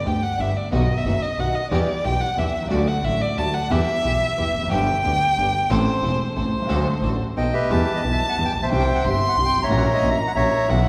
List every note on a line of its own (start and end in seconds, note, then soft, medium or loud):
0.04 0.19 D2 medium
0.04 0.19 D3 soft
0.04 0.19 G3 soft
0.04 0.19 B3 soft
0.04 0.19 D4 soft
0.04 0.19 G4 medium
0.04 0.19 G4 soft
0.04 0.24 G5 medium
0.23 0.42 F#5 medium
0.38 0.52 G1 medium
0.38 0.53 G1 medium
0.38 0.52 G2 medium
0.38 0.52 D3 soft
0.38 0.53 G3 soft
0.38 0.52 B3 soft
0.38 0.53 B3 soft
0.38 0.52 D4 soft
0.38 0.52 G4 medium
0.38 0.53 G4 soft
0.38 0.58 E5 medium
0.57 0.72 D5 medium
0.71 0.86 B1 medium
0.71 0.86 B2 medium
0.71 0.86 D#3 medium
0.71 0.86 F#3 medium
0.71 0.85 B3 medium
0.71 0.86 B3 medium
0.71 0.86 D#4 medium
0.71 0.86 F#4 medium
0.71 0.99 D#5 medium
0.98 1.24 E5 medium
1.05 1.19 F#1 medium
1.05 1.19 F#2 medium
1.05 1.19 D#3 soft
1.05 1.19 F#3 soft
1.05 1.19 B3 medium
1.05 1.19 B3 soft
1.05 1.19 D#4 soft
1.05 1.19 F#4 medium
1.22 1.41 D#5 medium
1.38 1.52 B1 medium
1.38 1.52 B2 medium
1.38 1.52 D#3 soft
1.38 1.52 F#3 soft
1.38 1.52 B3 soft
1.38 1.52 D#4 soft
1.38 1.52 F#4 medium
1.38 1.53 F#4 soft
1.38 1.57 F#5 medium
1.55 1.70 D#5 medium
1.70 1.85 E2 medium
1.70 1.85 E3 medium
1.70 1.85 G3 medium
1.70 1.85 B3 medium
1.70 1.85 E4 medium
1.70 1.85 G4 medium
1.70 2.06 D5 medium
2.04 2.18 B1 medium
2.04 2.19 B2 medium
2.04 2.18 E3 soft
2.04 2.18 G3 soft
2.04 2.18 B3 soft
2.04 2.19 B3 soft
2.04 2.18 E4 soft
2.04 2.18 G4 medium
2.04 2.19 G4 medium
2.04 2.22 G5 medium
2.21 2.40 F#5 medium
2.37 2.51 E2 medium
2.37 2.52 E2 medium
2.37 2.52 E3 medium
2.37 2.52 G3 soft
2.37 2.51 B3 soft
2.37 2.52 B3 soft
2.37 2.51 E4 soft
2.37 2.51 G4 soft
2.37 2.52 G4 soft
2.37 2.70 E5 medium
2.54 2.69 C2 medium
2.59 2.63 B1 soft
2.63 2.67 C2 medium
2.67 2.71 C#2 medium
2.67 2.84 D2 medium
2.67 2.85 D2 medium
2.67 2.85 D3 medium
2.67 2.85 F#3 medium
2.67 2.84 A3 medium
2.67 2.84 D4 medium
2.67 2.84 F#4 medium
2.67 2.89 D5 medium
2.71 2.85 A3 medium
2.71 2.85 F#4 medium
2.88 3.06 F#5 medium
3.03 3.18 A1 medium
3.03 3.18 A2 soft
3.03 3.18 D3 soft
3.03 3.18 F#3 soft
3.03 3.17 A3 soft
3.03 3.18 A3 soft
3.03 3.18 D4 soft
3.03 3.18 F#4 medium
3.03 3.23 E5 loud
3.22 3.40 D5 medium
3.36 3.51 D2 medium
3.36 3.52 D2 medium
3.36 3.52 D3 medium
3.36 3.51 F#3 soft
3.36 3.51 A3 soft
3.36 3.52 A3 soft
3.36 3.51 D4 soft
3.36 3.51 F#4 soft
3.36 3.52 F#4 soft
3.36 3.55 A5 loud
3.54 3.73 F#5 medium
3.70 3.85 E2 medium
3.70 3.85 E3 medium
3.70 3.85 G3 medium
3.70 3.84 B3 medium
3.70 3.85 B3 medium
3.70 3.84 E4 medium
3.70 3.85 G4 medium
3.70 4.71 E5 loud
4.03 4.18 B1 medium
4.03 4.19 B2 medium
4.03 4.18 E3 soft
4.03 4.18 G3 soft
4.03 4.18 B3 soft
4.03 4.19 B3 soft
4.03 4.18 E4 soft
4.03 4.18 G4 medium
4.03 4.19 G4 medium
4.37 4.52 E2 medium
4.37 4.52 E3 medium
4.37 4.52 G3 soft
4.37 4.51 B3 soft
4.37 4.52 B3 soft
4.37 4.51 E4 soft
4.37 4.51 G4 soft
4.37 4.52 G4 medium
4.54 4.71 F1 medium
4.59 4.63 E2 soft
4.59 4.67 F2 medium
4.67 4.71 F#2 medium
4.67 4.85 G2 medium
4.67 4.85 D3 medium
4.67 4.84 B3 medium
4.67 4.84 D4 medium
4.67 4.85 G4 medium
4.71 4.85 G1 medium
4.71 4.85 G3 medium
4.71 4.85 B3 medium
4.71 4.85 G4 medium
4.71 5.72 G5 loud
5.03 5.18 D2 medium
5.03 5.18 D3 medium
5.03 5.18 G3 soft
5.03 5.17 B3 medium
5.03 5.18 B3 soft
5.03 5.18 D4 soft
5.03 5.18 G4 medium
5.03 5.18 G4 soft
5.37 5.51 G1 medium
5.37 5.51 G2 medium
5.37 5.51 D3 soft
5.37 5.51 G3 soft
5.37 5.51 B3 soft
5.37 5.52 B3 soft
5.37 5.51 D4 soft
5.37 5.51 G4 medium
5.37 5.51 G4 soft
5.70 5.84 A1 loud
5.70 5.84 A1 medium
5.70 5.84 A2 medium
5.70 5.84 E3 medium
5.70 5.84 A3 medium
5.70 5.84 C4 medium
5.70 5.84 E4 medium
5.70 5.84 A4 medium
5.70 6.36 C5 loud
6.02 6.17 E1 medium
6.02 6.17 E2 medium
6.02 6.17 E3 medium
6.02 6.17 A3 soft
6.02 6.17 C4 medium
6.02 6.17 C4 soft
6.02 6.17 E4 medium
6.02 6.17 A4 medium
6.36 6.50 A1 medium
6.36 6.50 A2 medium
6.36 6.50 E3 soft
6.36 6.50 A3 soft
6.36 6.50 C4 medium
6.36 6.50 C4 soft
6.36 6.50 E4 soft
6.36 6.50 A4 medium
6.36 7.33 C5 medium
6.52 6.69 C2 medium
6.57 6.61 B1 soft
6.62 6.66 C2 medium
6.62 6.69 C#2 medium
6.68 6.83 D2 medium
6.68 6.83 D2 loud
6.68 6.84 D3 medium
6.68 6.83 F#3 medium
6.68 6.83 A3 medium
6.68 6.83 D4 medium
6.68 6.83 F#4 medium
6.68 6.83 A4 medium
6.68 6.84 A4 medium
7.02 7.17 A1 medium
7.02 7.17 A2 medium
7.02 7.17 F#3 soft
7.02 7.17 A3 soft
7.02 7.17 D4 medium
7.02 7.17 D4 soft
7.02 7.17 F#4 soft
7.02 7.17 A4 medium
7.36 7.51 B1 medium
7.36 7.51 B2 medium
7.36 7.51 F#3 soft
7.36 7.51 B3 medium
7.36 7.51 B3 soft
7.36 7.51 D#4 soft
7.36 7.51 A4 medium
7.36 7.69 D#5 medium
7.36 7.54 G5 medium
7.53 8.01 G4 medium
7.53 8.01 B4 medium
7.53 7.93 E5 medium
7.70 7.84 E2 medium
7.70 7.85 E2 loud
7.70 7.85 E3 medium
7.70 7.85 G3 medium
7.70 7.85 B3 medium
7.70 7.85 G4 medium
7.70 8.67 A5 loud
7.96 8.03 D#5 medium
8.04 8.18 B1 medium
8.04 8.19 B1 medium
8.04 8.18 B2 medium
8.04 8.18 E3 soft
8.04 8.18 G3 soft
8.04 8.18 B3 soft
8.04 8.19 G4 medium
8.12 8.28 E5 medium
8.29 8.37 F#5 medium
8.38 8.52 E2 medium
8.38 8.52 E3 medium
8.38 8.52 G3 soft
8.38 8.52 B3 soft
8.38 8.52 G4 soft
8.45 8.53 G5 medium
8.55 8.63 A1 soft
8.55 8.70 A#1 medium
8.61 8.67 A#1 medium
8.61 9.09 C5 medium
8.61 9.09 E5 medium
8.61 8.69 A5 medium
8.67 8.71 B1 medium
8.67 8.85 C2 loud
8.71 8.85 C2 medium
8.71 8.85 C3 medium
8.71 8.85 E3 medium
8.71 8.85 G3 medium
8.71 8.85 C4 medium
8.71 8.85 G4 medium
8.71 9.06 G5 loud
8.79 8.86 G5 medium
8.95 9.03 F#5 medium
9.04 9.18 G1 medium
9.04 9.19 G1 medium
9.04 9.19 G2 medium
9.04 9.18 E3 soft
9.04 9.19 G3 soft
9.04 9.19 C4 soft
9.04 9.19 G4 medium
9.04 9.70 C6 loud
9.11 9.29 E5 medium
9.29 9.36 F#5 medium
9.37 9.51 C2 medium
9.37 9.52 C2 medium
9.37 9.52 C3 medium
9.37 9.52 E3 soft
9.37 9.52 G3 soft
9.37 9.52 C4 soft
9.37 9.52 G4 medium
9.46 9.61 G5 medium
9.53 9.69 G#1 medium
9.58 9.62 G1 medium
9.62 9.66 G#1 medium
9.62 10.09 C#5 medium
9.62 10.09 E5 medium
9.62 9.70 A#5 medium
9.67 9.70 A1 medium
9.67 9.84 A#1 loud
9.67 9.84 A#1 medium
9.67 9.84 A#2 medium
9.67 9.84 E3 medium
9.67 9.84 A#3 medium
9.67 9.84 C#4 medium
9.71 9.85 F#4 medium
9.71 10.71 A#5 loud
9.77 9.85 F#5 medium
9.94 10.10 D#5 medium
10.03 10.17 A#1 medium
10.03 10.17 A#2 medium
10.03 10.17 E3 medium
10.03 10.17 A#3 soft
10.03 10.17 C#4 soft
10.03 10.17 F#4 medium
10.11 10.18 E5 medium
10.28 10.31 F#5 medium
10.35 10.50 A#1 medium
10.35 10.50 A#2 medium
10.35 10.50 E3 soft
10.35 10.50 A#3 soft
10.35 10.50 C#4 soft
10.35 10.50 F#4 medium
10.35 10.67 C#5 medium
10.35 10.89 E5 loud
10.68 10.83 B1 medium
10.68 10.84 B1 loud
10.68 10.83 B2 medium
10.68 10.83 E3 medium
10.68 10.83 F#3 medium
10.68 10.83 B3 medium
10.68 10.83 F#4 medium
10.68 10.89 F#5 medium